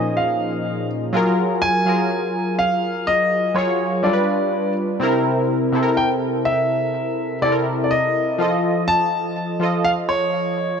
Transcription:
Already playing: A#2 F3 C#4 D#4 G#4 A#4 D#5
0.17 F5
1.13 F#3 F4 G#4 A#4
1.62 G#5
1.85 F#3 F4 G#4 A#4
2.59 F5
3.07 D#5
3.54 F#3 F4 G#4 C#5
4.03 G3 D4 F4 A4 D5
4.13 B4
5.00 C3 C4 E4 A#4
5.72 C3 C4 E4 A4
5.83 A#4
5.97 G5
6.45 E5
7.42 C3 C4 E4 A4 D5
7.52 A#4
7.84 D5
7.91 D#5
8.38 F3 F4 A4 D#5
8.88 A5
9.60 F3 F4 A4 D#5
9.84 F5
10.09 C#5

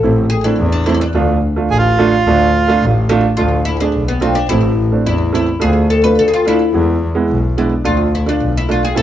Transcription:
Already playing: A4
0.03 A1 A3 C4 E4
0.30 G#4
0.44 A3 C4 D4 E4
0.59 E2
0.72 D4
0.86 A3 C4 D4 E4
0.94 E4
1.01 D4
1.15 D2 A3 D4 F4
1.56 A3 D4 F4
1.70 A1 G#4
1.78 F4
1.99 A3 D4 F4
2.26 D2 A3 D4 F4
2.68 A3 D4 F4
2.81 A1
3.09 A3 D4 F4
3.37 D2 A3 D4 F4
3.65 E4
3.80 A3 D4 G#4
3.94 B1
4.08 B3
4.21 A3 C4 D4 F4
4.35 D4
4.49 A1 A3 C4 E4
4.92 A3 C4 D4
5.06 E2 E4
5.33 A3 C4 E4
5.60 D2 A3 D4 F4 G#4
5.90 A4
6.03 A3 D4 F4 B4
6.18 D2 A4
6.28 G#4
6.34 F4
6.46 A3 D4 E4 F4
6.73 E2 G#3 B3 E4
7.15 G#3 B3 E4
7.29 B1
7.57 G#3 B3 D4 E4
7.84 D2 A3 D4 F4
8.15 E4
8.26 A3 D4 F4
8.41 B1
8.57 E4
8.69 A3 D4 F4
8.85 G#4
8.95 A1 A3 C4 E4 A4

